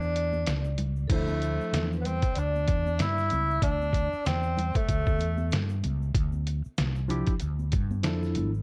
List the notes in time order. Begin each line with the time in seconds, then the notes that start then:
Already playing: E2 D4 D5
0.02 shaker
0.15 closed hi-hat, shaker
0.33 high conga, shaker
0.46 C#2, snare, closed hi-hat, shaker
0.64 shaker
0.78 closed hi-hat, low conga, shaker
0.96 shaker
1.08 D2 F3 D4 E4 A4, kick, closed hi-hat, crash, shaker
1.12 A3 C5
1.28 high conga, shaker
1.42 closed hi-hat, shaker
1.61 shaker
1.73 E2, snare, closed hi-hat, shaker
1.92 shaker
1.97 B3 B4
2.01 C5, closed hi-hat
2.06 C4, low conga, shaker
2.22 muted fretless electric bass stroke, kick, closed hi-hat, shaker
2.34 D2 D5, closed hi-hat, shaker
2.38 D4
2.55 high conga, shaker
2.68 E2, kick, closed hi-hat, shaker
2.87 high conga, shaker
2.98 G2 E4 E5, snare, closed hi-hat, shaker
3.18 snare, shaker
3.30 C#2, closed hi-hat, high conga, low conga, shaker
3.50 shaker
3.62 D2 D4 D5, kick, closed hi-hat, shaker
3.81 high conga, shaker
3.93 kick, closed hi-hat, shaker
4.13 muted fretless electric bass stroke, shaker
4.25 E2 C4 C5, snare, closed hi-hat, shaker
4.43 shaker
4.57 closed hi-hat, low conga, shaker
4.74 A3 A4, kick, closed hi-hat, shaker
4.89 D2, kick, closed hi-hat, shaker
5.06 kick, high conga, shaker
5.19 E2, closed hi-hat, shaker
5.38 high conga, shaker
5.51 G2, snare, closed hi-hat, shaker
5.69 shaker
5.83 C#2, closed hi-hat, high conga, low conga, shaker
6.02 shaker
6.15 D2, kick, closed hi-hat, shaker
6.32 high conga, shaker
6.47 closed hi-hat, shaker
6.65 muted fretless electric bass stroke, shaker
6.78 C2, snare, closed hi-hat, shaker
6.96 shaker
7.08 F3 D4 E4 G4, closed hi-hat, low conga, shaker
7.27 muted fretless electric bass stroke, kick, closed hi-hat, shaker
7.40 D2, closed hi-hat, shaker
7.59 high conga, shaker
7.72 G2, kick, closed hi-hat, shaker
7.91 high conga, shaker
8.03 F2 F3 D4 E4 A4, snare, closed hi-hat, shaker
8.23 snare, shaker
8.35 G#1, closed hi-hat, high conga, low conga, shaker
8.54 shaker